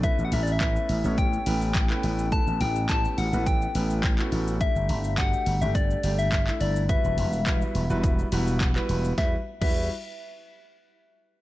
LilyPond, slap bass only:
\new Staff \with { instrumentName = "Slap bass" } { \clef bass \time 4/4 \key e \dorian \tempo 4 = 105 r16 a,,16 a,,4 a,,16 a,,8. a,,4 a,,8~ | a,,16 a,,16 a,,4 a,,16 a,,8. a,,4 a,,8~ | a,,16 g,,16 g,,4 g,,16 g,,8. g,,4 g,,8~ | g,,16 e,,16 e,,4 e,,16 e,,8. e,,4 e,,8 |
e,16 r8 e,8 r2 r8. | }